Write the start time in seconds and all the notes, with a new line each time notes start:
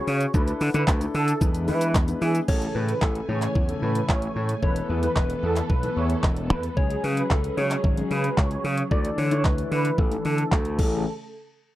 Already playing: C#4 F#4 G#4 C#5
0.07 C#3, open hi-hat, shaker
0.21 closed hi-hat, shaker
0.34 D2 D4 E4 A4 B4, kick, shaker
0.48 closed hi-hat, shaker
0.61 D3, open hi-hat, shaker
0.74 D3 D4 E4 A4 B4, closed hi-hat, shaker
0.88 D2, kick, clap, shaker
1.01 D4 E4 A4, closed hi-hat, shaker
1.14 D3 A4, open hi-hat, shaker
1.28 closed hi-hat, shaker
1.41 E2 G#3 B3 D4 E4 B4, kick, shaker
1.55 closed hi-hat, shaker
1.68 E3 G#3 B3 D4 E4 B4, open hi-hat, shaker
1.81 closed hi-hat, shaker
1.95 E2, kick, clap, shaker
2.08 G#3 B3 D4 E4 B4, closed hi-hat, shaker
2.21 E3 G#4, open hi-hat, shaker
2.35 closed hi-hat, shaker
2.48 A1 C#3 E3 A3 C#4 G#4 A4 C#5 G#5, kick, crash
2.62 closed hi-hat
2.75 A2 B4
2.88 B4, closed hi-hat
3.02 A1 A4, kick, clap
3.15 closed hi-hat
3.28 A2 E3 A3 C#4 G#4 C#5
3.42 clap, closed hi-hat
3.55 E2, kick
3.69 E3 A3 C#4 A4, closed hi-hat
3.82 A2 B4
3.95 closed hi-hat
4.09 A1 C#5, kick, clap
4.22 closed hi-hat
4.36 A2
4.49 closed hi-hat
4.62 E1 E3 A3 B3 A4 B4 C#5, kick
4.76 closed hi-hat
4.89 E2 B4
5.03 E3 A3 B3 B4, closed hi-hat
5.16 E1 B4, kick, clap
5.30 closed hi-hat
5.43 E2 A4
5.56 clap, closed hi-hat
5.70 B1 B4, kick
5.83 E3 A3 B3 A4, closed hi-hat
5.96 E2 C#5
6.10 closed hi-hat
6.23 E1, kick, clap
6.36 closed hi-hat
6.50 E2 B4
6.63 closed hi-hat
6.77 C#2 F#3 G#3 C#4 G#4 C#5, kick
6.90 closed hi-hat
7.04 C#3 B4, open hi-hat
7.17 B4, closed hi-hat
7.30 C#2 A4, kick, clap
7.44 closed hi-hat
7.57 C#3 F#3 G#3 C#4 G#4 C#5, open hi-hat
7.71 clap, closed hi-hat
7.84 G#1, kick
7.97 F#3 G#3 C#4 G#4, closed hi-hat
8.11 C#3 B4, open hi-hat
8.24 closed hi-hat
8.37 C#2 C#5, kick, clap
8.51 closed hi-hat
8.64 C#3, open hi-hat
8.78 closed hi-hat
8.91 D2 E3 A3 D4 A4 D5, kick
9.05 closed hi-hat
9.18 D3 C#5, open hi-hat
9.31 E3 A3 D4 E4 C#5, closed hi-hat
9.45 D2 B4, kick, clap
9.58 closed hi-hat
9.71 D3 B4, open hi-hat
9.85 closed hi-hat
9.98 A1 A4, kick
10.11 E3 A3 D4 A4, closed hi-hat
10.25 D3 A4, open hi-hat
10.38 closed hi-hat
10.52 D2, kick, clap
10.65 closed hi-hat
10.79 A1 C#3 E3 A3 C#4 G#4 A4, kick, crash